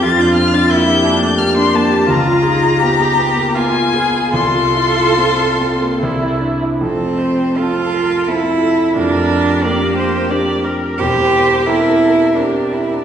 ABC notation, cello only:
X:1
M:3/4
L:1/16
Q:1/4=85
K:F
V:1 name="Cello"
F4 E2 D6 | F4 G4 F2 _A2 | A8- A2 z2 | C4 F4 E4 |
D4 B,6 z2 | G4 E4 D2 E D |]